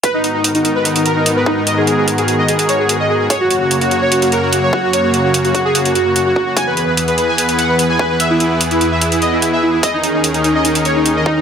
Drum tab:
HH |x-x-xxx-xxx-x---|x-x-xxx-xxx-x---|x-x-xxx-xxx-x---|x-x-xxx-xxx-x---|
BD |o-------------o-|----------------|o-------------o-|------o-------o-|

HH |x-x-xxx-xxx-x---|x-x-xxx-xxx-x---|x-x-xxx-xxx-x---|
BD |o-------------o-|----------------|o-------------o-|